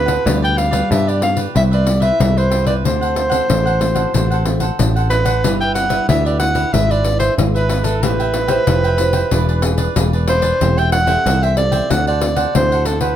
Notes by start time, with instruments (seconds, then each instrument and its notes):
Already playing: picked electric bass D2, nylon-string guitar A2 C4 F#4 B4, soprano saxophone B4
0.06 cavaquinho A4 C5 F#5, pandeiro
0.25 picked electric bass D2, nylon-string guitar D3 G3 B3 F4, cavaquinho F4 G4 B4 D5, pandeiro
0.42 cavaquinho G4 B4 D5, soprano saxophone G5, pandeiro
0.58 soprano saxophone F5, pandeiro
0.71 nylon-string guitar G3 B3 F4, cavaquinho G4 B4 D5, pandeiro
0.90 picked electric bass G2, nylon-string guitar D3, cavaquinho F4 G4 B4 D5, soprano saxophone E5, pandeiro
1.07 cavaquinho G4 B4 D5, soprano saxophone D5, pandeiro
1.21 nylon-string guitar G3 B3 F4, soprano saxophone F5, muted cavaquinho stroke, pandeiro
1.36 cavaquinho G4 B4 D5, pandeiro
1.54 picked electric bass C2, nylon-string guitar C3 G3 B3 E4, cavaquinho G4 B4 C5 E5, soprano saxophone E5, pandeiro
1.71 cavaquinho B4 C5 E5, soprano saxophone D5, pandeiro
1.86 nylon-string guitar G3 B3 E4, muted cavaquinho stroke, pandeiro
2.00 cavaquinho B4 C5 E5, soprano saxophone E5, pandeiro
2.20 picked electric bass C2, nylon-string guitar G2 G3 B3 E4, pandeiro
2.37 cavaquinho B4 C5 E5, soprano saxophone C5, pandeiro
2.50 cavaquinho G4 B4 C5 E5, pandeiro
2.65 cavaquinho B4 C5 E5, soprano saxophone D5, pandeiro
2.84 picked electric bass D2, nylon-string guitar D3 A3 C4 F#4, cavaquinho D4 A4 C5 F#5, soprano saxophone C5, pandeiro
3.01 cavaquinho A4 C5 F#5, pandeiro
3.16 pandeiro
3.30 nylon-string guitar A3 C4 F#4, cavaquinho A4 C5 F#5, pandeiro
3.49 picked electric bass A1, nylon-string guitar A2 A3 C4 F#4, cavaquinho D4 A4 C5 F#5, pandeiro
3.66 cavaquinho A4 C5 F#5, pandeiro
3.80 nylon-string guitar A3 C4 F#4, muted cavaquinho stroke, pandeiro
3.95 cavaquinho A4 C5 F#5, pandeiro
4.13 picked electric bass A1, nylon-string guitar D3 A3 C4 F#4, cavaquinho D4 A4 C5 F#5, pandeiro
4.31 cavaquinho A4 C5 F#5, pandeiro
4.45 nylon-string guitar A3 C4 F#4, muted cavaquinho stroke, pandeiro
4.60 cavaquinho A4 C5 F#5, pandeiro
4.79 picked electric bass A1, nylon-string guitar A2 A3 C4 F#4, pandeiro
4.96 cavaquinho A4 C5 F#5, pandeiro
5.10 cavaquinho D4 A4 C5 F#5, soprano saxophone B4, pandeiro
5.25 cavaquinho A4 C5 F#5, pandeiro
5.43 picked electric bass G1, nylon-string guitar G3 D4 E4 B4, cavaquinho D4 G4 B4 E5, pandeiro
5.61 cavaquinho G4 B4 E5, soprano saxophone G5, pandeiro
5.75 soprano saxophone F#5, pandeiro
5.89 nylon-string guitar D4 E4 B4, cavaquinho G4 B4 E5, pandeiro
6.08 picked electric bass D2, nylon-string guitar D3 D4 E4 B4, cavaquinho D4 G4 B4 E5, soprano saxophone E5, pandeiro
6.25 cavaquinho G4 B4 E5, soprano saxophone D5, pandeiro
6.39 nylon-string guitar D4 E4 B4, soprano saxophone F#5, muted cavaquinho stroke, pandeiro
6.54 cavaquinho G4 B4 E5, pandeiro
6.73 picked electric bass G#1, nylon-string guitar G#3 D4 E4 B4, cavaquinho D4 G#4 B4 E5, soprano saxophone E5, pandeiro
6.89 cavaquinho G#4 B4 E5, soprano saxophone D5, pandeiro
7.04 nylon-string guitar D4 E4 B4, muted cavaquinho stroke, pandeiro
7.19 cavaquinho G#4 E5, soprano saxophone C5, pandeiro
7.38 picked electric bass G#1, nylon-string guitar G#3 D4 E4 B4, pandeiro
7.54 cavaquinho G#4 B4 E5, soprano saxophone B4, pandeiro
7.69 cavaquinho D4 G#4 B4 E5, pandeiro
7.84 cavaquinho G#4 B4 E5, soprano saxophone A4, pandeiro
8.02 picked electric bass A1, nylon-string guitar A3 E4 G4, cavaquinho A4 C5 E5 G5, soprano saxophone B4, pandeiro
8.19 cavaquinho E5 G5, pandeiro
8.34 pandeiro
8.48 nylon-string guitar E4 G4 C5, cavaquinho C5 E5 G5, pandeiro
8.67 picked electric bass F1, nylon-string guitar E3 E4 G4 C5, cavaquinho A4 C5 E5 G5, pandeiro
8.84 cavaquinho C5 E5 G5, pandeiro
8.98 nylon-string guitar E4 G4 C5, muted cavaquinho stroke, pandeiro
9.13 cavaquinho C5 E5 G5, pandeiro
9.31 picked electric bass E1, nylon-string guitar E3 D4 G#4 B4, cavaquinho E4 G#4 B4 D5, pandeiro
9.49 cavaquinho G#4 B4 D5, pandeiro
9.62 nylon-string guitar D4 G#4 B4, muted cavaquinho stroke, pandeiro
9.77 cavaquinho G#4 B4 D5, pandeiro
9.96 picked electric bass E1, nylon-string guitar B2 D4 G#4 B4, pandeiro
10.13 cavaquinho G#4 B4 D5, pandeiro
10.27 cavaquinho E4 G#4 B4 D5, soprano saxophone C5, pandeiro
10.42 cavaquinho G#4 B4 D5, pandeiro
10.61 picked electric bass E1, nylon-string guitar E3 C4 G4 A4, cavaquinho A4 C5 E5 G5, pandeiro
10.77 cavaquinho C5 E5 G5, soprano saxophone G5, pandeiro
10.92 soprano saxophone F#5, pandeiro
11.07 nylon-string guitar C4 G4 A4, cavaquinho C5 E5 G5, pandeiro
11.26 picked electric bass C2, nylon-string guitar E3, cavaquinho A4 C5 E5 G5, pandeiro
11.42 cavaquinho C5 E5 G5, soprano saxophone E5, pandeiro
11.57 nylon-string guitar C4 G4 A4, soprano saxophone D5, muted cavaquinho stroke, pandeiro
11.71 cavaquinho C5 E5 G5, pandeiro
11.90 picked electric bass D2, nylon-string guitar D3 C4 F#4 A4, cavaquinho D4 A4 C5 F#5, soprano saxophone F#5, pandeiro
12.07 cavaquinho A4 C5 F#5, soprano saxophone D5, pandeiro
12.21 nylon-string guitar C4 F#4 A4, muted cavaquinho stroke, pandeiro
12.36 cavaquinho A4 C5 F#5, pandeiro
12.55 picked electric bass D2, nylon-string guitar A2 C4 F#4 A4, soprano saxophone C5, pandeiro
12.72 cavaquinho A4 C5 F#5, pandeiro
12.85 cavaquinho D4 A4 C5 F#5, soprano saxophone A4, pandeiro
13.01 cavaquinho A4 C5 F#5, soprano saxophone B4, pandeiro